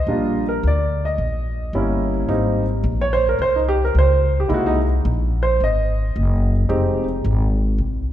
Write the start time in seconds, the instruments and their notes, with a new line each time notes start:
Already playing: grand piano D#5
0.07 upright bass A#1, grand piano G3 A#3 D4 F4
0.49 grand piano A#4
0.63 upright bass D2
0.67 grand piano D5
1.05 grand piano D#5
1.18 upright bass A#1
1.73 upright bass G1, grand piano G3 A#3 C#4 E4
2.28 upright bass G#1, grand piano G3 A#3 C4 D#4
2.84 upright bass A#1
3.01 grand piano C#5
3.13 grand piano C5
3.29 grand piano A#4
3.39 upright bass C2, grand piano C5
3.56 grand piano D#4
3.68 grand piano G4
3.85 grand piano A#4
3.95 upright bass C#2, grand piano C5
4.40 grand piano G4
4.48 upright bass C2, grand piano G#3 A#3 D#4 E4
4.54 grand piano F#4
4.66 grand piano D#4
5.05 upright bass A#1
5.43 grand piano C5
5.60 upright bass G#1, grand piano D#5
6.16 upright bass F#1
6.69 upright bass F1, grand piano G#3 C4 D#4 G4
7.25 upright bass G#1
7.78 upright bass C2